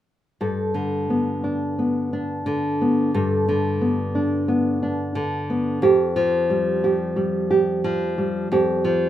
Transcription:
nylon-string guitar
0.41 G2 A4
0.74 D3
1.10 B3
1.44 D4
1.79 B3
2.13 D4
2.46 D3
2.81 B3
3.14 G2 A4
3.49 D3
3.81 B3
4.15 D4
4.48 B3
4.83 D4
5.15 D3
5.50 B3
5.82 F2 G4
6.16 F3
6.50 G3
6.84 G4
7.16 G3
7.51 G4
7.84 F3
8.18 G3
8.52 F2 G4
8.85 F3

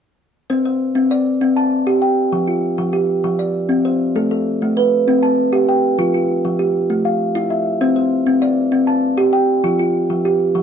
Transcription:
kalimba
0.50 C4 C5
0.65 C5
0.95 C4
1.11 D5
1.41 C4
1.56 A5
1.87 G4
2.02 G5
2.33 F3
2.48 F4
2.78 F3
2.93 G4
3.24 F3
3.39 D5
3.69 C4
3.85 C5
4.16 A3 A4
4.31 A4
4.62 A3
4.77 B4
5.08 C4
5.23 A5
5.53 G4
5.69 G5
5.99 F3 F4
6.14 F4
6.45 F3
6.59 G4
6.90 A3
7.05 F5
7.35 E4
7.50 E5
7.81 C4 C5
7.96 C5
8.27 C4
8.42 D5
8.72 C4
8.87 A5
9.18 G4
9.33 G5
9.64 F3 F4
9.79 F4
10.10 F3
10.25 G4
10.55 F3

